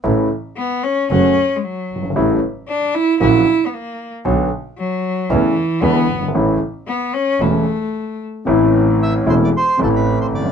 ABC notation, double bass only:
X:1
M:4/4
L:1/8
Q:1/4=114
K:A
V:1 name="Double bass" clef=bass
A,,, z3 F,,, z2 =G,,, | A,,, z3 ^A,,, z3 | B,,, z3 E,, z E,, =G,,, | A,,, z3 E,,, z3 |
[K:Am] A,,,3 E,,, z A,,,2 G,,, |]